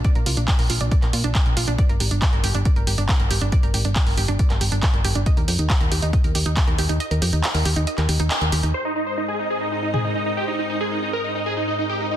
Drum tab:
HH |xxoxxooxxxoxxxox|xxoxxxoxxxoxxxox|xxoxxooxxxoxxxox|xxoxxxoxxxoxxxox|
CP |----x----x--x---|----x-------x---|----x----x--x---|----x-------x---|
T2 |----------------|----------------|----------------|----------------|
BD |o---o---o---o---|o---o---o---o---|o---o---o---o---|o---o---o---o---|

HH |xxoxxooxxxoxxxox|----------------|----------------|
CP |----x----x--x---|----------------|----------------|
T2 |----------------|-----------o----|----------------|
BD |----------------|----------------|----------------|